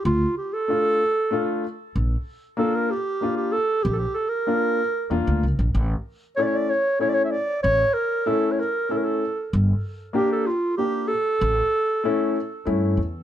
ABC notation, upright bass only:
X:1
M:3/4
L:1/16
Q:1/4=95
K:none
V:1 name="Upright bass" clef=bass
D,,2 z8 z2 | _B,,,2 z8 z2 | _B,,,2 z6 E,, D,, ^C,, B,,, | A,,,2 z8 z2 |
A,,,2 z8 z2 | G,,,2 z8 z2 | A,,,2 z6 G,,2 E,,2 |]